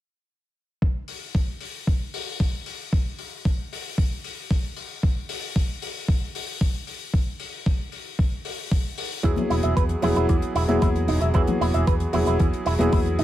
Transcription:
0.82 kick loud
1.08 open hi-hat medium
1.35 kick medium
1.60 open hi-hat loud
1.87 kick loud
2.14 open hi-hat loud
2.40 kick medium
2.66 open hi-hat loud
2.93 kick loud
3.19 open hi-hat loud
3.45 kick loud
3.73 open hi-hat loud
3.98 kick loud
4.24 open hi-hat loud
4.51 kick loud
4.51 open hi-hat medium
4.76 open hi-hat loud
5.03 kick loud
5.29 open hi-hat loud
5.56 kick loud
5.82 open hi-hat loud
6.08 kick loud
6.35 open hi-hat loud
6.61 kick loud
6.87 open hi-hat loud
7.14 kick loud
7.40 open hi-hat loud
7.66 kick loud
7.92 open hi-hat medium
8.19 kick loud
8.45 open hi-hat loud
8.71 kick loud
8.71 open hi-hat medium
8.98 open hi-hat loud
9.23 9.32 E2 medium
9.23 9.99 F#3 medium
9.23 10.00 B3 medium
9.23 9.31 E4 medium
9.23 10.00 E4 medium
9.23 10.00 G#4 medium
9.23 kick loud
9.23 closed hi-hat medium
9.36 closed hi-hat soft
9.36 high conga medium
9.36 low conga medium
9.50 9.59 E1 medium
9.50 9.54 E4 medium
9.50 open hi-hat medium
9.63 9.72 E1 medium
9.63 9.73 E5 medium
9.63 closed hi-hat medium
9.76 9.93 E2 medium
9.76 9.83 B4 medium
9.76 kick medium
9.76 closed hi-hat medium
9.89 closed hi-hat soft
10.02 10.11 E1 medium
10.02 10.65 F#3 medium
10.02 10.66 B3 medium
10.02 10.07 E4 medium
10.02 10.66 E4 medium
10.02 10.66 G#4 medium
10.02 open hi-hat medium
10.02 high conga medium
10.02 low conga medium
10.16 10.24 E1 medium
10.16 10.26 E4 medium
10.16 closed hi-hat medium
10.29 10.38 E2 medium
10.29 10.36 E3 medium
10.29 kick loud
10.29 closed hi-hat medium
10.42 closed hi-hat soft
10.55 10.64 E1 medium
10.55 10.62 E4 medium
10.55 open hi-hat medium
10.68 10.77 E1 medium
10.68 11.31 F#3 medium
10.68 11.31 B3 medium
10.68 11.32 E4 medium
10.68 11.32 G#4 medium
10.68 10.79 E5 medium
10.68 closed hi-hat medium
10.68 high conga medium
10.82 11.10 E2 medium
10.82 10.89 E4 medium
10.82 kick loud
10.82 closed hi-hat medium
10.96 closed hi-hat soft
11.08 11.17 E1 medium
11.08 11.18 D#4 medium
11.08 open hi-hat loud
11.21 11.30 E1 medium
11.21 11.28 E5 medium
11.21 closed hi-hat medium
11.34 11.43 E2 medium
11.34 12.11 E3 medium
11.34 12.10 F#3 medium
11.34 12.10 B3 medium
11.34 11.41 E4 medium
11.34 12.11 G#4 medium
11.34 kick loud
11.34 closed hi-hat medium
11.47 closed hi-hat soft
11.47 high conga medium
11.47 low conga medium
11.61 11.69 E1 medium
11.61 11.65 E4 medium
11.61 open hi-hat medium
11.74 11.82 E1 medium
11.74 11.84 E5 medium
11.74 closed hi-hat medium
11.87 12.04 E2 medium
11.87 11.94 B4 medium
11.87 kick medium
11.87 closed hi-hat medium
12.00 closed hi-hat soft
12.13 12.22 E1 medium
12.13 12.76 F#3 medium
12.13 12.76 B3 medium
12.13 12.18 E4 medium
12.13 12.77 E4 medium
12.13 12.77 G#4 medium
12.13 open hi-hat loud
12.13 high conga medium
12.13 low conga medium
12.26 12.35 E1 medium
12.26 12.37 E4 medium
12.26 closed hi-hat medium
12.40 12.48 E2 medium
12.40 12.47 E3 medium
12.40 kick loud
12.40 closed hi-hat medium
12.53 closed hi-hat soft
12.66 12.75 E1 medium
12.66 12.73 E4 medium
12.66 open hi-hat loud
12.79 12.88 E1 medium
12.79 13.24 F#3 medium
12.79 13.24 B3 medium
12.79 13.24 E4 medium
12.79 13.24 G#4 medium
12.79 12.89 E5 medium
12.79 closed hi-hat medium
12.79 high conga medium
12.92 13.20 E2 medium
12.92 12.99 E4 medium
12.92 kick medium
12.92 open hi-hat medium
13.06 closed hi-hat soft
13.19 13.24 E1 medium
13.19 13.24 D#4 medium
13.19 open hi-hat medium

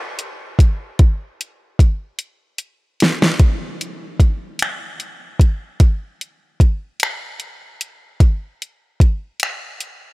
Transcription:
0.19 closed hi-hat medium
0.59 kick medium
0.59 closed hi-hat medium
0.99 kick loud
0.99 closed hi-hat medium
1.41 closed hi-hat medium
1.79 kick medium
1.79 closed hi-hat soft
2.19 closed hi-hat medium
2.58 closed hi-hat medium
3.00 snare medium
3.00 closed hi-hat medium
3.22 snare medium
3.39 kick medium
3.39 closed hi-hat medium
3.81 closed hi-hat soft
4.20 kick medium
4.20 closed hi-hat medium
4.59 finger snap loud
4.59 closed hi-hat medium
5.00 closed hi-hat soft
5.40 kick medium
5.40 closed hi-hat medium
5.80 kick medium
5.80 closed hi-hat medium
6.21 closed hi-hat soft
6.60 kick medium
6.60 closed hi-hat medium
7.00 finger snap loud
7.00 closed hi-hat medium
7.40 closed hi-hat soft
7.81 closed hi-hat medium
8.20 kick loud
8.20 closed hi-hat medium
8.62 closed hi-hat soft
9.00 kick medium
9.00 closed hi-hat medium
9.40 finger snap loud
9.40 closed hi-hat medium
9.80 closed hi-hat soft

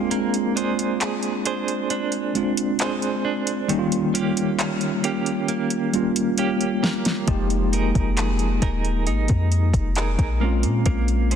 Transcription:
0.00 2.31 G#3 medium
0.00 0.11 A#3 medium
0.00 2.31 C4 medium
0.00 2.32 D4 medium
0.00 2.33 F4 medium
0.00 0.14 G#4 medium
0.00 3.71 G#4 medium
0.00 0.14 C5 medium
0.11 3.69 A#3 medium
0.11 closed hi-hat medium
0.34 closed hi-hat medium
0.56 1.44 D4 medium
0.56 1.00 G#4 medium
0.56 1.46 C5 medium
0.56 closed hi-hat medium
0.79 closed hi-hat soft
1.01 1.45 G#4 medium
1.01 clap loud
1.01 closed hi-hat medium
1.23 closed hi-hat soft
1.45 1.89 D4 medium
1.45 2.79 G#4 medium
1.45 2.80 C5 medium
1.45 closed hi-hat medium
1.68 closed hi-hat medium
1.90 2.79 D4 medium
1.90 closed hi-hat medium
2.12 closed hi-hat soft
2.35 3.69 G#3 medium
2.35 3.70 C4 medium
2.35 3.70 D4 medium
2.35 3.70 F4 medium
2.35 closed hi-hat soft
2.57 closed hi-hat medium
2.79 3.23 D4 medium
2.79 3.79 G#4 medium
2.79 3.79 C5 medium
2.79 clap loud
2.79 closed hi-hat medium
3.02 closed hi-hat soft
3.25 3.78 D4 medium
3.47 closed hi-hat medium
3.68 7.27 D#3 medium
3.68 5.89 G3 medium
3.68 5.90 A#3 medium
3.68 5.90 C#4 medium
3.68 closed hi-hat medium
3.73 3.78 D#4 medium
3.79 5.94 F4 medium
3.92 closed hi-hat medium
4.14 5.03 A#3 medium
4.14 4.58 C#4 medium
4.14 5.05 G4 medium
4.14 closed hi-hat medium
4.37 closed hi-hat soft
4.59 5.03 C#4 medium
4.59 clap loud
4.59 closed hi-hat medium
4.81 closed hi-hat soft
5.04 5.48 A#3 medium
5.04 6.37 C#4 medium
5.04 6.39 G4 medium
5.04 closed hi-hat medium
5.26 closed hi-hat medium
5.48 6.38 A#3 medium
5.48 closed hi-hat medium
5.70 closed hi-hat soft
5.93 7.28 G3 medium
5.93 7.27 A#3 medium
5.93 7.28 C#4 medium
5.93 7.29 F4 medium
5.93 closed hi-hat soft
6.16 closed hi-hat medium
6.38 6.83 A#3 medium
6.38 7.37 C#4 medium
6.38 7.73 G4 medium
6.38 closed hi-hat medium
6.61 closed hi-hat soft
6.83 7.76 A#3 medium
6.83 snare medium
7.05 snare medium
7.05 closed hi-hat medium
7.27 7.92 F1 loud
7.27 10.78 F3 medium
7.27 10.37 G#3 medium
7.27 10.37 A#3 medium
7.27 10.38 D#4 medium
7.27 kick loud
7.27 closed hi-hat medium
7.31 10.39 G4 medium
7.50 closed hi-hat medium
7.73 8.61 D#4 medium
7.73 8.17 G#4 medium
7.73 8.63 A#4 medium
7.73 closed hi-hat medium
7.95 8.60 F1 loud
7.95 kick medium
7.95 closed hi-hat soft
8.17 8.62 G#4 medium
8.17 clap loud
8.17 closed hi-hat medium
8.39 closed hi-hat soft
8.62 9.09 D#1 loud
8.62 9.06 D#4 medium
8.62 9.97 G#4 medium
8.62 9.97 A#4 medium
8.62 kick medium
8.62 closed hi-hat medium
8.85 closed hi-hat soft
9.07 9.29 G#1 medium
9.07 9.95 D#4 medium
9.07 closed hi-hat medium
9.28 9.73 F2 loud
9.28 kick medium
9.28 closed hi-hat soft
9.52 closed hi-hat soft
9.74 10.17 F1 loud
9.74 kick medium
9.74 closed hi-hat medium
9.95 10.50 D#4 medium
9.95 10.89 G#4 medium
9.95 11.32 A#4 medium
9.95 clap loud
9.95 closed hi-hat medium
10.19 10.66 A#1 loud
10.19 kick medium
10.19 closed hi-hat soft
10.40 11.36 G#3 medium
10.40 10.86 A#3 medium
10.40 11.36 C4 medium
10.40 11.36 C#4 medium
10.45 11.36 F4 medium
10.63 10.85 A#2 loud
10.63 closed hi-hat medium
10.86 11.36 A#1 loud
10.86 11.36 A#3 medium
10.86 kick loud
10.86 closed hi-hat medium
11.08 closed hi-hat medium
11.31 11.36 C#4 medium
11.31 11.36 G#4 medium
11.31 11.36 C5 medium
11.31 closed hi-hat medium

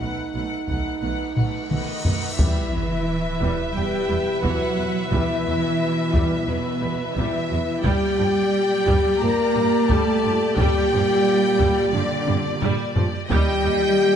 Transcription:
0.00 0.08 B1 soft
0.00 0.08 B2 soft
0.00 0.33 A3 soft
0.00 1.67 D#4 medium
0.00 0.34 B4 soft
0.00 0.32 F#5 soft
0.00 cymbal swell soft
0.33 0.43 B1 soft
0.33 0.42 B2 soft
0.33 0.67 A3 soft
0.33 0.67 B4 soft
0.33 0.67 F#5 soft
0.68 0.78 B1 soft
0.68 0.76 B2 soft
0.68 1.00 A3 soft
0.68 1.02 B4 soft
0.68 1.00 F#5 soft
0.68 taiko medium
1.01 1.10 B1 soft
1.01 1.11 B2 soft
1.01 1.35 A3 soft
1.01 1.35 B4 soft
1.01 1.35 F#5 soft
1.36 1.45 B1 soft
1.36 1.44 B2 soft
1.36 1.69 A3 soft
1.36 1.69 B4 soft
1.36 1.69 F#5 soft
1.36 taiko low-mid medium
1.70 1.79 B1 soft
1.70 1.79 B2 soft
1.70 2.35 D#3 soft
1.70 2.03 A3 soft
1.70 2.34 D#4 medium
1.70 2.03 B4 soft
1.70 2.34 D#5 medium
1.70 2.04 F#5 soft
1.70 taiko mid medium
2.04 2.13 B1 soft
2.04 2.13 B2 soft
2.04 2.38 A3 soft
2.04 2.38 B4 soft
2.04 2.38 F#5 soft
2.04 taiko low medium
2.38 2.47 E2 medium
2.38 7.81 B2 medium
2.38 3.75 E3 medium
2.38 7.81 E3 medium
2.38 2.70 G3 medium
2.38 3.76 E4 medium
2.38 7.80 B4 medium
2.38 3.75 E5 medium
2.38 7.80 E5 soft
2.38 taiko medium
2.38 sub drop medium
2.73 2.81 E2 soft
2.73 2.81 F#3 soft
3.40 3.49 E2 medium
3.40 3.72 G3 soft
3.40 taiko medium
3.74 3.83 E2 soft
3.74 3.82 G3 soft
3.74 4.42 G3 medium
3.74 4.42 G4 medium
3.74 4.43 G5 medium
4.08 4.17 E2 soft
4.08 4.16 G3 soft
4.42 4.52 E2 medium
4.42 4.75 E3 medium
4.42 5.10 F#3 medium
4.42 5.10 F#4 medium
4.42 5.10 F#5 medium
4.42 taiko medium
4.77 4.86 E2 soft
4.77 4.85 F#3 soft
5.11 5.20 E2 medium
5.11 6.48 E3 medium
5.11 5.43 G3 medium
5.11 6.48 E4 medium
5.11 6.45 E5 medium
5.11 taiko medium
5.45 5.54 E2 soft
5.45 5.53 F#3 soft
6.13 6.22 E2 medium
6.13 6.45 G3 medium
6.13 taiko medium
6.47 6.56 E2 soft
6.47 7.14 B2 medium
6.47 6.55 F#3 soft
6.47 7.00 B3 medium
6.47 7.16 B4 medium
6.81 6.90 E2 soft
6.81 6.89 G3 medium
7.16 7.25 E2 medium
7.16 7.84 E3 medium
7.16 7.48 G3 medium
7.16 7.83 E4 medium
7.16 7.84 E5 medium
7.16 taiko medium
7.50 7.59 E2 soft
7.50 7.58 F#3 soft
7.84 7.93 G2 medium
7.84 13.13 A#2 medium
7.84 8.16 G3 medium
7.84 9.18 G3 medium
7.84 13.13 G3 medium
7.84 13.29 G4 medium
7.84 9.21 G4 medium
7.84 13.26 D5 medium
7.84 9.18 G5 medium
7.84 taiko medium
8.18 8.27 G2 soft
8.18 8.26 F3 medium
8.87 8.95 G2 medium
8.87 9.18 G3 medium
8.87 taiko medium
9.21 9.29 G2 medium
9.21 9.29 F3 medium
9.21 9.87 A#3 medium
9.21 9.89 A#4 loud
9.21 9.89 A#5 medium
9.55 9.63 G2 medium
9.55 9.63 G3 medium
9.89 9.97 G2 medium
9.89 10.21 G3 medium
9.89 10.57 A3 medium
9.89 10.58 A4 medium
9.89 10.57 A5 medium
9.89 taiko medium
10.23 10.32 G2 medium
10.23 10.31 F3 medium
10.57 10.66 G2 medium
10.57 11.91 G3 medium
10.57 10.89 G3 medium
10.57 11.91 G4 loud
10.57 11.91 G5 medium
10.57 taiko medium
10.91 11.00 G2 medium
10.91 10.99 F3 soft
11.59 11.68 G2 medium
11.59 11.91 G3 medium
11.59 taiko medium
11.93 12.01 G2 medium
11.93 12.62 D3 medium
11.93 12.01 F3 medium
11.93 12.62 D4 medium
11.93 12.60 D5 medium
12.27 12.36 G2 medium
12.27 12.35 G3 medium
12.27 taiko high medium
12.62 12.70 G2 medium
12.62 12.93 G3 medium
12.62 taiko low-mid medium
12.96 13.04 G2 medium
12.96 13.04 F3 medium
12.96 taiko low loud
13.30 13.38 D#2 medium
13.30 14.16 A#2 medium
13.30 14.16 D#3 medium
13.30 14.16 G3 medium
13.30 13.62 G3 medium
13.30 14.16 G4 loud
13.30 14.16 D#5 medium
13.30 14.16 G5 loud
13.30 14.16 G5 medium
13.30 taiko medium
13.64 13.72 D#2 medium
13.64 13.73 G3 medium

